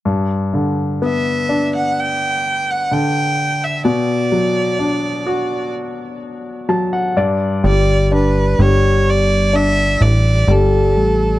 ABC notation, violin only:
X:1
M:4/4
L:1/16
Q:1/4=63
K:Glyd
V:1 name="Violin"
z4 e3 f g3 f g3 e | d8 z8 | d2 B2 c2 d2 e2 d2 A4 |]